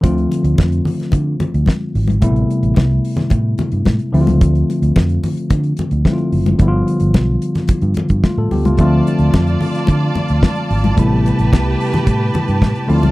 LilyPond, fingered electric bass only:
\new Staff \with { instrumentName = "Fingered electric bass" } { \clef bass \time 4/4 \key d \dorian \tempo 4 = 110 d,8 r16 d,16 f,8 r8 d8 r16 d,16 r8 gis,,8 | a,,8 r16 a,,16 c,8 r8 a,8 r16 g,16 a,16 r16 d,16 cis,16 | d,8 r16 d,16 f,8 r8 d8 r16 d,16 r8 fis,,8 | g,,8 r16 g,,16 b,,8 r8. g,16 r16 g,16 r16 a,16 d,16 cis,16 |
d,8 r16 d,16 f,8 r8 d8 r16 d,16 r8 gis,,8 | a,,8. a,,16 c,8 r8 a,8 r16 g,16 a,16 r16 d,16 cis,16 | }